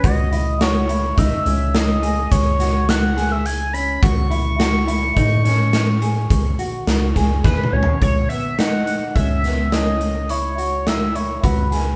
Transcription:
<<
  \new Staff \with { instrumentName = "Analog synth lead" } { \time 7/4 \key cis \minor \tempo 4 = 105 dis''4 cis''4 e''4 dis''4 cis''4 fis''8. e''16 gis''8 b''8 | cis'''1. b'8 cis''8 | cis''8 e''8 fis''4 e''4 dis''4 cis''4 e''8 cis''8 b'4 | }
  \new Staff \with { instrumentName = "Clean electric guitar" } { \time 7/4 \key cis \minor fis'8 e'8 fis'8 e'8 dis'8 cis'4 gis'4 fis'4 gis'4 cis'8 | fis'8 e'8 fis'8 e'8 dis'8 cis'4 gis'4 fis'4 gis'4 cis'8 | r8 b8 dis'4 cis'8 b8 cis'4 e'8 fis'4 e'8 fis'8 gis'8 | }
  \new Staff \with { instrumentName = "Analog synth bass" } { \clef bass \time 7/4 \key cis \minor cis,2 cis,16 r16 cis,4. cis,2. | cis,2 a,2 cis,8 r8 cis,8 cis,8 dis,16 r16 cis,16 r16 | cis,8 r4. cis,1 cis,4 | }
  \new DrumStaff \with { instrumentName = "Drums" } \drummode { \time 7/4 <hh bd>8 hh8 <hh sn>8 hh8 <hh bd sn>8 hh8 <hh sn>8 hh8 <hh bd sn>8 <hh sn>8 <hh sn>8 <hh sn>8 hh8 hh8 | <hh bd>8 hh8 <hh sn>8 hh8 <hh bd>8 <hh sn>8 <hh sn>8 hh8 <hh bd>8 hh8 <hh sn>8 <hh bd sn>8 \tuplet 3/2 { <bd sn>8 toml8 tomfh8 } | <hh bd>8 hh8 <hh sn>8 hh8 <hh bd>8 <hh sn>8 <hh sn>8 hh8 hh8 hh8 <hh sn>8 hh8 <hh bd>8 <hh sn>8 | }
>>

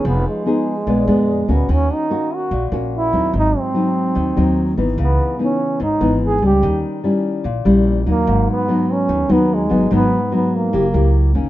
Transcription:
<<
  \new Staff \with { instrumentName = "Trombone" } { \time 4/4 \key gis \minor \tempo 4 = 146 ces'8 aes2. b8 | cis'8 dis'4 fis'4 r8 e'4 | dis'8 bis2. r8 | b4 cis'4 dis'4 gis'8 g'8~ |
g'8 r2. ais8~ | ais8 b4 cis'4 b8 gis4 | b4 b8 ais4. r4 | }
  \new Staff \with { instrumentName = "Nylon-string guitar" } { \time 4/4 \key gis \minor << { <b dis' gis'>4 <ces' ees' aes'>8 r8 <gis b d'>8 <gis b d'>4 <ais cis' fis'>8~ | <ais cis' fis'>4 <ais cis' fis'>4 r8 <ais cis' fis'>4 <fis bis dis'>8~ | <fis bis dis'>4 <fis bis dis'>4. <fis bis dis'>4 <e b dis'>8~ | <e b dis'>4 <e b dis'>4 r8 <e b dis'>4 <g cis'>8~ |
<g cis'>4 <g cis' e'>4 r8 <g cis' e'>4 <fis dis'>8~ | <fis dis'>4 <fis b dis'>4. <fis b dis'>4 <fis b dis'>8 | <fis b dis'>8 r8 <fis b dis'>4 <ais e' g'>8 <ais e' g'>4 <dis ais cis'>8 | } \\ { f2 ais,2 | dis2 ais,2 | gis,2 dis2 | cis2 gis,2 |
dis2 ais,2 | gis,2 dis2 | gis,2 fis2 | } >> }
  \new Staff \with { instrumentName = "Upright bass" } { \clef bass \time 4/4 \key gis \minor f,,8 r4. ais,,8 eis,4 d,8 | dis,8 r4. ais,,8 ais,,4 dis,8 | gis,,8 r4. dis,8 dis,4 gis,,8 | cis,8 r4. gis,,8 gis,,4 cis,8 |
dis,8 r4. ais,,8 ais,,4 dis,8 | gis,,8 r4. dis,8 dis,4 gis,,8 | gis,,8 r4. fis,,8 cis,4 fis,,8 | }
>>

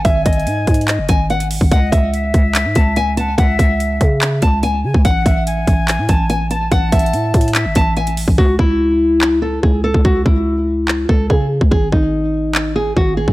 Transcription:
<<
  \new Staff \with { instrumentName = "Flute" } { \time 4/4 \key cis \minor \tempo 4 = 144 gis''2 dis''4 r4 | dis''4 e''2~ e''8 fis''8 | e''2 r4. gis''8 | fis''4 gis''2~ gis''8 a''8 |
a''2 e''4 r4 | r1 | r1 | r1 | }
  \new Staff \with { instrumentName = "Nylon-string guitar" } { \time 4/4 \key cis \minor e''8 dis''2 gis''8 fis''8 r8 | fis''8 e''2 a''8 gis''8 a''8 | fis''8 e''2 a''8 gis''8 r8 | fis''8 e''2 a''8 gis''8 a''8 |
fis''8 e''2 a''8 gis''8 r8 | fis'8 e'2 a'8 gis'8 a'8 | fis'8 e'2 a'8 gis'8 r8 | gis'8 dis'2 gis'8 fis'8 gis'8 | }
  \new Staff \with { instrumentName = "808-style bass" } { \clef bass \time 4/4 \key cis \minor gis,,8 gis,,8 gis,8 gis,8. fis,,16 gis,,4~ gis,,16 gis,,16 | cis,8 cis,4 cis,8. gis,16 cis,4. | cis,8 cis,4 cis4 cis,4 cis16 cis,16 | a,,8 a,,4 a,,8. a,16 a,,4. |
a,,8 a,,8 a,8 a,8. gis,,16 a,,4~ a,,16 a,,16 | cis,8 cis,2~ cis,8 cis,8. cis,16~ | cis,8 cis,2 cis,8 cis8. cis,16 | gis,,8 gis,,2~ gis,,8 gis,,8. gis,,16 | }
  \new DrumStaff \with { instrumentName = "Drums" } \drummode { \time 4/4 \tuplet 3/2 { <hh bd>16 r16 r16 <hh bd>16 hh16 hh16 hh16 r16 r16 <hh bd>16 hh16 hh16 } <hc hh>8 <hh bd>8 hh16 hh16 hho16 bd16 | <hh bd>8 <hh bd>8 hh8 <hh bd>8 <hc hh>8 <hh bd>8 hh8 hh8 | <hh bd>8 <hh bd>8 hh8 <hh bd>8 <hc hh>8 <hh bd>8 hh8. bd16 | <hh bd>8 <hh bd>8 hh8 <hh bd>8 <hc hh>8 <hh bd>8 hh8 hh8 |
\tuplet 3/2 { <hh bd>16 r16 r16 <hh bd>16 hh16 hh16 hh16 r16 r16 <hh bd>16 hh16 hh16 } <hc hh>8 <hh bd>8 hh16 hh16 hho16 bd16 | bd8 bd8 r4 hc4 bd8. bd16 | bd8 bd8 r4 hc8 bd8 bd8. bd16 | bd8 bd8 r4 hc4 bd8. bd16 | }
>>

